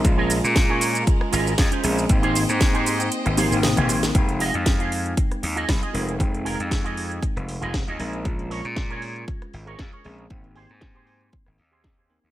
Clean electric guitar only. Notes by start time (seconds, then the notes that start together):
0.17 C#4 F4 G#4 A#4
0.55 muted clean electric guitar stroke
0.69 C#4 F4 G#4 C#5
1.20 muted clean electric guitar stroke
1.32 C#4 F4 G#4 A#4
1.71 C#4 F4 G#4 C5
2.22 D#4 G4 G#4 C5
2.60 muted clean electric guitar stroke
2.74 D#4 G4 G#4 C5
3.25 muted clean electric guitar stroke
3.37 D#4 G4 G#4 C5
3.64 D#5
3.77 D#4 G4 G#4 C5
4.39 F4 G#4 D#5
4.65 muted clean electric guitar stroke
4.79 F4 G#4 F5
5.56 F4 G#4 D#5
5.81 F4 G#4 D#5
6.44 F4 G#4 A#4
6.70 muted clean electric guitar stroke
6.84 F4 G#4 D#5
7.61 F4 G#4 D#5
7.87 F4 G#4 D#5
8.50 G#4 A#4 C#5
8.76 muted clean electric guitar stroke
8.90 G#4 A#4 C#5
9.66 G#4 A#4 C#5
9.92 G#4 A#4 C#5
10.55 G4 G#4 C5
10.81 muted clean electric guitar stroke
10.95 G4 G#4 C5
11.71 G4 G#4 C5
11.97 G4 G#4 C5